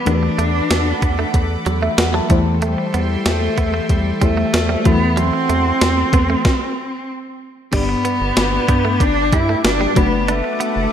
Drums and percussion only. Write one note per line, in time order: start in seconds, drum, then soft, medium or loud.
0.06 closed hi-hat medium
0.39 closed hi-hat medium
0.70 snare loud
0.70 closed hi-hat medium
1.02 kick medium
1.02 closed hi-hat medium
1.34 kick medium
1.34 closed hi-hat medium
1.66 closed hi-hat medium
1.98 snare loud
1.98 closed hi-hat medium
2.30 kick medium
2.30 closed hi-hat medium
2.62 closed hi-hat medium
2.94 closed hi-hat medium
3.26 snare loud
3.26 closed hi-hat medium
3.58 kick medium
3.58 closed hi-hat medium
3.89 kick medium
3.89 closed hi-hat medium
4.21 kick medium
4.21 closed hi-hat medium
4.54 snare loud
4.54 closed hi-hat medium
4.85 kick medium
4.85 closed hi-hat medium
5.17 closed hi-hat medium
5.50 closed hi-hat medium
5.81 snare loud
5.81 closed hi-hat medium
6.13 kick medium
6.13 closed hi-hat medium
6.45 kick medium
6.45 snare medium
7.73 kick medium
7.73 closed hi-hat medium
7.73 crash medium
8.05 closed hi-hat medium
8.37 snare loud
8.37 closed hi-hat medium
8.68 kick medium
8.68 closed hi-hat medium
9.00 kick medium
9.00 closed hi-hat medium
9.33 kick medium
9.33 closed hi-hat medium
9.65 snare loud
9.65 closed hi-hat medium
9.96 kick loud
9.96 closed hi-hat medium
10.28 closed hi-hat medium
10.61 closed hi-hat medium